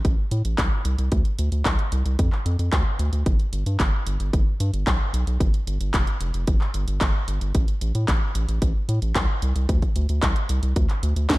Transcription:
0.05 A1, kick, closed hi-hat
0.31 A2, closed hi-hat
0.45 A1, closed hi-hat
0.58 C2, kick, clap, closed hi-hat
0.85 C2, closed hi-hat
0.98 C2, closed hi-hat
1.12 D2, kick, closed hi-hat
1.25 closed hi-hat
1.39 D2, closed hi-hat
1.52 D2, closed hi-hat
1.65 C2, kick, clap, closed hi-hat
1.79 closed hi-hat
1.92 C2, closed hi-hat
2.05 C2, closed hi-hat
2.19 F2, kick, closed hi-hat
2.32 clap
2.46 F2, closed hi-hat
2.59 F2, closed hi-hat
2.73 D2, kick, clap, closed hi-hat
2.99 D2, closed hi-hat
3.13 D2, closed hi-hat
3.26 G1, kick, closed hi-hat
3.40 closed hi-hat
3.53 G1, closed hi-hat
3.66 G2, closed hi-hat
3.80 G1, kick, clap, closed hi-hat
4.06 G1, closed hi-hat
4.20 G1, closed hi-hat
4.33 G1, kick, closed hi-hat
4.60 G2, closed hi-hat
4.73 G1, closed hi-hat
4.87 B1, kick, clap, closed hi-hat
5.13 B1, closed hi-hat
5.27 B1, closed hi-hat
5.40 G1, kick, closed hi-hat
5.54 closed hi-hat
5.67 G1, closed hi-hat
5.80 G1, closed hi-hat
5.94 F1, kick, clap, closed hi-hat
6.07 closed hi-hat
6.21 F1, closed hi-hat
6.34 F1, closed hi-hat
6.47 G1, kick, closed hi-hat
6.61 clap
6.74 G1, closed hi-hat
6.88 G1, closed hi-hat
7.01 G1, kick, clap, closed hi-hat
7.28 G1, closed hi-hat
7.41 G1, closed hi-hat
7.55 A1, kick, closed hi-hat
7.68 closed hi-hat
7.81 A1, closed hi-hat
7.95 A2, closed hi-hat
8.08 A1, kick, clap, closed hi-hat
8.35 A1, closed hi-hat
8.48 A1, closed hi-hat
8.62 A1, kick, closed hi-hat
8.89 A2, closed hi-hat
9.02 A1, closed hi-hat
9.15 C2, kick, clap, closed hi-hat
9.42 C2, closed hi-hat
9.56 C2, closed hi-hat
9.69 D2, kick, closed hi-hat
9.82 kick, closed hi-hat
9.96 D2, closed hi-hat
10.09 D2, closed hi-hat
10.22 C2, kick, clap, closed hi-hat
10.36 closed hi-hat
10.49 C2, closed hi-hat
10.63 C2, closed hi-hat
10.76 D2, kick, closed hi-hat
10.90 clap, closed hi-hat
11.03 D2, closed hi-hat
11.16 D2, closed hi-hat
11.30 D2, kick, snare, clap, closed hi-hat

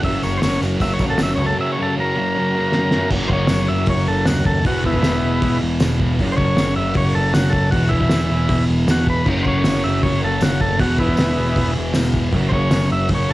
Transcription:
0.02 F#1 F#2 C#3 C#4 F#4 A#4 E5, kick, open hi-hat
0.08 F#3
0.23 F#1 C#3 F#3 C#5, tambourine
0.37 C5
0.42 F#1 F#2 C#5, snare, open hi-hat, tambourine
0.47 C#3 F#3
0.62 F#1 C#3 F#3, tambourine
0.67 F#2
0.80 F#1 F#2 C#3 E5, kick, open hi-hat, tambourine
0.84 F#3
0.94 C#5
0.99 A#1 F#3, kick, tambourine
1.05 F#2 C#3
1.10 A4
1.18 F#1 F#2, snare, open hi-hat, tambourine
1.23 C#3 F#3 E5
1.36 C#2 C#5
1.41 C#3 F#3
1.46 A4
1.59 F#2 C#3 F#3 E5
1.72 C#5
1.77 C#3 F#3
1.82 A4
1.97 F#2 C#3 F#3 A#4
2.16 F#2 C#3 F#3
2.36 F#2 C#3 F#3
2.56 F#2 C#3 F#3
2.72 F#2 C#3, snare
2.78 F#3
2.91 snare
2.95 C#3 F#3
3.09 F#1 F#2 C#4 F#4 A#4, kick, crash
3.15 C#3 F#3
3.28 F#1 C5, kick
3.33 C#5
3.47 F#1, snare, open hi-hat, tambourine
3.68 F#1 E5
3.86 F#1 C#5, kick, open hi-hat
4.08 F#1 A4
4.25 D#2 F#4, snare, open hi-hat, tambourine
4.45 A4, kick
4.65 E1 E2 B2 E4 F#4 G#4 B4, kick, open hi-hat
4.69 E3
4.84 E1 B3 E4, kick
4.94 kick
5.03 E1, snare, open hi-hat, tambourine
5.23 E1
5.42 E1, kick, open hi-hat
5.62 E1
5.80 E1, snare, open hi-hat, tambourine
6.00 kick
6.19 F#1 F#2 C#3 C#4 F#4 A#4, kick, open hi-hat
6.23 F#3
6.32 C5
6.37 F#1 C#5, kick
6.57 F#1, snare, open hi-hat, tambourine
6.76 F#1 E5
6.94 F#1 C#5, kick, open hi-hat
7.15 F#1 A4
7.34 F#1 F#4, snare, open hi-hat, tambourine
7.50 A4, kick
7.71 E1 E2 E4 F#4 G#4 B4, kick, open hi-hat
7.75 B2 E3
7.89 E1 E4, kick
8.01 kick
8.10 E1, snare, open hi-hat, tambourine
8.30 E1
8.49 E1, kick, open hi-hat
8.69 E1
8.87 E1, snare, open hi-hat, tambourine
8.91 F#4
9.07 B4, kick
9.24 F#1 F#2 C#4 F#4 A#4, kick, crash
9.29 C#3 F#3
9.43 F#1 C5, kick
9.48 C#5
9.64 F#1, snare, open hi-hat, tambourine
9.84 F#1 E5
10.03 F#1 C#5, kick, open hi-hat
10.23 F#1 A4
10.41 F#1 F#4, snare, open hi-hat, tambourine
10.61 A4, kick
10.78 E1 E2 B2 E4 F#4 G#4 B4, kick, open hi-hat
10.82 E3
10.98 E1 B3 E4, kick
11.08 kick
11.17 E1, snare, open hi-hat, tambourine
11.38 E1
11.56 E1, kick, open hi-hat
11.78 E1
11.94 E1, snare, open hi-hat, tambourine
12.14 kick
12.33 F#1 F#2 C#3 F#3 C#4 F#4 A#4, kick, open hi-hat
12.49 F#1 C5, kick
12.53 C#5
12.71 F#1, snare, open hi-hat, tambourine
12.91 F#1 E5
13.09 F#1, kick, open hi-hat
13.15 C#5
13.29 F#1

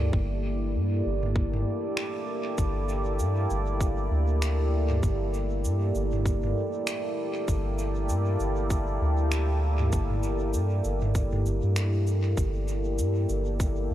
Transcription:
Already playing: D2 A#3 E4 G4 A4 D5
0.00 mid tom
0.13 G1, kick
0.75 G2
1.06 G1
1.23 mid tom
1.36 kick
1.53 mid tom
1.97 finger snap
2.58 G1, kick, shaker
2.89 shaker
3.19 G2, shaker
3.50 G1, shaker
3.80 kick, shaker
4.11 D2
4.42 finger snap, shaker
4.90 mid tom
5.03 G1, kick, shaker
5.34 shaker
5.65 G2, shaker
5.95 G1, shaker
6.13 mid tom
6.26 kick, shaker
6.43 mid tom
6.87 finger snap, shaker
7.48 G1, kick, shaker
7.79 shaker
8.09 G2, shaker
8.40 G1, shaker
8.70 kick, shaker
9.01 D2
9.32 finger snap, shaker
9.80 mid tom
9.92 G1, kick, shaker
10.10 mid tom
10.23 shaker
10.54 G2, shaker
10.84 G1, shaker
11.02 mid tom
11.15 kick, shaker
11.33 mid tom
11.45 G1, shaker
11.63 G2
11.76 finger snap, shaker
12.07 shaker
12.37 G1, kick, shaker
12.68 shaker
12.99 G2, shaker
13.29 G1, shaker
13.60 kick, shaker
13.90 D2

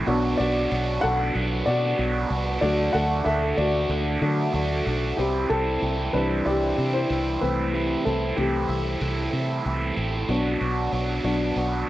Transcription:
0.06 B1 B2 F#3 B3 D4 F#4
0.37 B1 B3 D4 F#4 D5
0.71 B1 B2 F#3 B3 D4 F#4
1.01 B1 D4 F#4 A4 F#5
1.05 B3
1.34 B1 F#3 B3 D4 F#4
1.66 B2 B3 D4 F#4 D5
1.98 B1 B2 F#3 B3 D4 F#4
2.30 C2 B3 D4 F#4
2.61 D2 D3 F#3 A3 D4 F#4 D5
2.93 D2 D4 F#4 A4 F#5
2.97 A3
3.25 D2 D3 A3 D4 F#4 A4 E5
3.57 D2 A3 D4 F#4 D5
3.89 D2 D3 A3 D4 F#4
4.21 D3 F#3 A3 D4 F#4
4.53 D2 D3 A3 D4 F#4
4.85 B1 A3 D4 F#4
5.17 C2 C3 E3 G3 C4 E4 G4
5.50 C2 G3 C4 E4 A4
5.82 C2 E3 G3 C4 E4
6.13 C2 E3 G3 C4 D4 E4 B4
6.17 G3
6.45 C2 C3 E3 G3 C4 E4 G4 D5
6.77 C3 G3 C4 E4
6.94 E4 C5
7.09 C2 E3 G3 C4 E4
7.41 C2 E3 A3 C4 E4 B4
7.45 A3
7.74 C3 E3 A3 C4 E4
8.05 C2 A3 C4 E4 A4
8.37 C2 E3 A3 C4 E4 G4
8.68 C2 A3 C4 E4
9.01 C2 C3 E3 A3 C4 E4
9.32 C3 A3 C4 E4
9.65 C2 E3 A3 C4 E4
9.96 A1 A3 C4 E4
10.28 B1 B2 F#3 B3 D4 F#4
10.60 B1 B3 D4 F#4
10.92 B1 F#3 B3 D4 F#4
11.24 B1 F#3 B3 D4 F#4
11.56 B1 B2 F#3 B3 D4 F#4

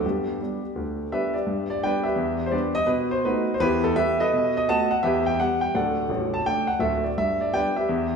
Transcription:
0.05 G2 B3 D4 G4
0.41 G3 B3 D4
0.76 D2
1.12 G3 B3 D4 G4 B4 E5
1.34 G4 B4 D5
1.46 G2
1.70 D5
1.83 G3 B3 D4 B4 D5 G5
2.04 G4 B4 E5
2.16 E2
2.46 C5
2.52 G3 B3 D4 G4 B4 D5
2.75 D#5
2.86 B2 B4
3.11 C5
3.25 A3 B3 D#4 F#4 B4
3.54 C5
3.60 E2 E4 G4 B4
3.84 A4
3.96 G3 B3 E4 G4 B4 E5
4.20 A4 B4 D#5
4.33 B2
4.57 D#5
4.69 A3 B3 F#4 D#5 F#5 A5
4.91 F#5
5.03 E2 G4 B4 E5
5.26 G5
5.40 G3 B3 G4 F#5
5.61 G5
5.75 D1 D2 A4 D5 F#5
6.09 A0 A1
6.34 A5
6.46 A3 D4 G5
6.67 F#5
6.79 D1 D2 A4 E5
7.04 D5
7.18 G2 E5
7.41 D5
7.53 G3 B3 D4 B4 D5 G5
7.76 G4 B4 E5
7.89 E2

